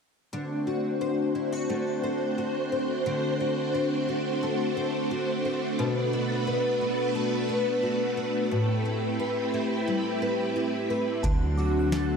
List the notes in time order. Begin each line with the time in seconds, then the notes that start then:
0.32 D3 A3 C4 D4 F#4 C5
0.67 F#4
1.01 C5
1.35 E4
1.52 F#4
1.69 A3
2.04 C5
2.38 F#4
2.72 C5
3.06 D3
3.40 F#4
3.75 C5
4.09 F#4
4.43 A3
4.77 C5
5.11 F#4
5.45 C5
5.79 B2 B3 F#4 B4
6.13 F#4
6.47 B4
6.81 F#4
7.15 A3
7.49 B4
7.83 F#4
8.17 B4
8.51 A2 C4 E4 G4 B4
8.85 E4
9.20 B4
9.54 E4
9.88 G3
10.22 B4
10.56 E4
10.90 B4
11.23 D2 D3 F#3 A3 C4 F#4 A5, kick, closed hi-hat
11.57 F#4 D6
11.79 F#6
11.92 A4, snare, closed hi-hat
12.02 A6